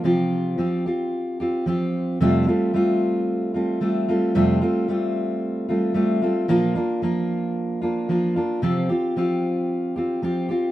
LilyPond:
\new Staff \with { instrumentName = "Steel-string acoustic guitar" } { \time 4/4 \key f \major \tempo 4 = 112 <c f c' f' g'>4 <f c' f' g'>8 <c' f' g'>4 <c' f' g'>8 <f c' f' g'>4 | <f, c g a c' f'>8 <g a c' f'>8 <g a c' f'>4. <g a c' f'>8 <g a c' f'>8 <g a c' f'>8 | <f, c g a c' f'>8 <g a c' f'>8 <g a c' f'>4. <g a c' f'>8 <g a c' f'>8 <g a c' f'>8 | <bes, f bes d' f'>8 <bes d' f'>8 <f bes d' f'>4. <bes d' f'>8 <f bes d' f'>8 <bes d' f'>8 |
<c f c' f' g'>8 <c' f' g'>8 <f c' f' g'>4. <c' f' g'>8 <f c' f' g'>8 <c' f' g'>8 | }